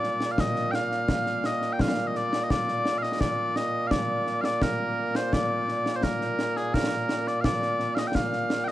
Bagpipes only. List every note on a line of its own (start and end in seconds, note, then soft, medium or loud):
0.00 8.72 A#2 medium
0.00 8.72 A#3 medium
0.00 0.31 D5 loud
0.31 0.40 F5 medium
0.40 0.71 D#5 loud
0.71 1.46 F5 loud
0.71 0.75 G5 loud
1.46 1.73 D#5 loud
1.73 1.81 G5 medium
1.81 2.07 F5 medium
2.07 2.17 D#5 medium
2.17 2.43 D5 loud
2.43 2.51 D#5 medium
2.51 2.98 D5 loud
2.98 3.03 F5 medium
3.03 3.13 D#5 medium
3.13 3.21 D#5 medium
3.21 3.56 D5 medium
3.56 3.87 D#5 loud
3.87 4.41 D5 medium
3.87 3.91 F5 medium
4.41 4.62 D5 medium
4.41 4.45 F5 medium
4.62 5.16 A#4 medium
5.16 5.33 C5 medium
5.33 5.96 D5 loud
5.96 6.03 C5 medium
6.03 6.57 A#4 medium
6.57 6.74 G#4 medium
6.74 7.28 A#4 medium
7.28 7.41 D5 medium
7.41 7.95 D5 loud
7.41 7.45 F5 loud
7.95 8.07 D#5 medium
7.95 7.99 F5 medium
8.07 8.15 G5 medium
8.15 8.64 F5 medium
8.64 8.72 D#5 loud
8.64 8.68 G5 loud